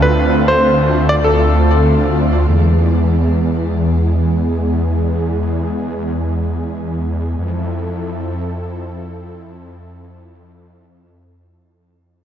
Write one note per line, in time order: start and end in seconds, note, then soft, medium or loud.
0.00 2.46 D2 medium
0.00 2.45 D3 medium
0.00 2.45 A3 medium
0.00 2.45 C4 medium
0.00 2.45 F4 medium
0.00 0.50 B4 medium
0.48 1.12 C5 loud
1.09 1.14 D5 loud
1.24 2.13 A4 medium
2.49 7.35 E2 medium
2.49 7.35 E3 medium
2.49 7.35 G#3 medium
2.49 7.35 B3 medium
2.49 7.35 G#4 medium
7.38 12.24 F2 medium
7.38 12.24 F3 medium
7.38 12.24 C4 medium
7.38 12.24 E4 medium
7.38 12.24 A4 medium